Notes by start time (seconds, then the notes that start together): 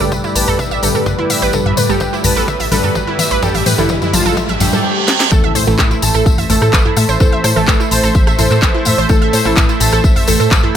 Already playing: A3 G4 B4 D5, riser
0.00 A1 G2 D3 G3 G4 A4
0.12 A1 B4, kick, mid tom, tambourine
0.24 E4, tambourine
0.35 A1 B4 A5, open hi-hat, tambourine
0.47 A1 A4, mid tom, tambourine
0.59 A1 E5, kick, mid tom, tambourine
0.71 A1 E5, tambourine
0.83 A1 G2 D3 G3 A4 B4, open hi-hat, tambourine
0.95 A2 A4, tambourine
1.06 A1 B4, kick, mid tom, tambourine
1.19 E4
1.30 A2 E5, open hi-hat, tambourine
1.42 A1 B4, tambourine
1.53 A1 G2 D3 G3 A4 B4, kick, mid tom, tambourine
1.66 A1 E5, mid tom
1.77 A2 B4, open hi-hat, mid tom, tambourine
1.89 A1 G2 D3 G3 G4 A4, tambourine
2.00 A1 B4, kick, mid tom, tambourine
2.13 E4, tambourine
2.24 A1 B4 A5, mid tom, open hi-hat, tambourine
2.37 A1 A4, tambourine
2.48 A1 E5, kick, mid tom, tambourine
2.60 A1 E5, open hi-hat, tambourine
2.72 A1 G2 D3 G3 A4 B4, open hi-hat, mid tom, tambourine
2.83 A2 A4, mid tom, tambourine
2.95 A1 B4, kick, mid tom, tambourine
3.07 E4
3.19 A2 E5, open hi-hat, mid tom, tambourine
3.31 A1 B4, tambourine
3.42 A1 G2 D3 G3 G4 A4, kick, mid tom, tambourine
3.54 A1 E5, open hi-hat, mid tom, tambourine
3.66 A2 B4, open hi-hat, mid tom, tambourine
3.78 A1 G2 D3 G3 E4 A4, mid tom, tambourine
3.89 A1 B4, kick, mid tom, tambourine
4.02 E4, mid tom, tambourine
4.13 A1 F4 A5, open hi-hat, mid tom, tambourine
4.26 A1 A4, mid tom, tambourine
4.37 A1 E5, kick, mid tom, tambourine, reverse cymbal
4.49 A1 E5, mid tom, tambourine
4.60 A1 G2 D3 G3 G4 E5, mid tom, open hi-hat, tambourine
4.73 A2 A4, mid tom, tambourine
5.08 snare
5.20 snare
5.31 A1 A2 E3 A3 A4 C5 E5, kick, cross-stick, tambourine, impact
5.44 A1 E5
5.55 A2 C5, open hi-hat, tambourine
5.67 A1 A2 E3 A3 E4 A4, tambourine
5.79 A1 B4, kick, cross-stick, clap, tambourine
5.91 E4, tambourine
6.02 A1 A4 A5, open hi-hat, tambourine
6.14 A1 A4, cross-stick, tambourine
6.26 A1 E5, kick, tambourine
6.38 A1 E5, mid tom, open hi-hat, tambourine
6.49 A1 A2 E3 A3 A4, mid tom, open hi-hat, tambourine
6.62 A2 A4, cross-stick, tambourine
6.73 A1 B4, kick, clap, tambourine
6.85 E4, mid tom
6.97 A2 E5, cross-stick, open hi-hat, tambourine
7.09 A1 C5, tambourine
7.20 A1 A2 E3 A3 A4 C5, kick, mid tom, tambourine
7.32 A1 E5
7.44 A2 C5, cross-stick, open hi-hat, tambourine
7.56 A1 A2 E3 A3 A4, tambourine
7.68 A1 B4, kick, clap, tambourine
7.80 E4, cross-stick, tambourine
7.91 A1 C5 A5, open hi-hat, tambourine
8.03 A1 A4, tambourine
8.15 A1 E5, kick, tambourine
8.27 A1 E5, cross-stick, tambourine
8.38 A1 A2 E3 A3 A4 C5, mid tom, open hi-hat, tambourine
8.51 A2 A4, clap, tambourine
8.62 A1 B4, kick, cross-stick, clap, tambourine
8.74 E4
8.85 A2 E5, mid tom, open hi-hat, tambourine
8.98 A1 C5, tambourine
9.09 A1 A2 E3 A3 A4, kick, cross-stick, tambourine
9.22 A1 E5
9.33 A2 C5, open hi-hat, tambourine
9.45 A1 A2 E3 A3 E4 A4, cross-stick, tambourine
9.57 A1 B4, kick, clap, tambourine
9.69 E4, tambourine
9.80 A1 A4 A5, open hi-hat, tambourine
9.92 A1 A4, cross-stick, tambourine
10.04 A1 E5, kick, tambourine
10.16 A1 E5, mid tom, open hi-hat, tambourine
10.27 A1 A2 E3 A3 A4, cross-stick, mid tom, open hi-hat, tambourine
10.40 A2 A4, tambourine
10.51 A1 B4, kick, clap, tambourine
10.63 E4, mid tom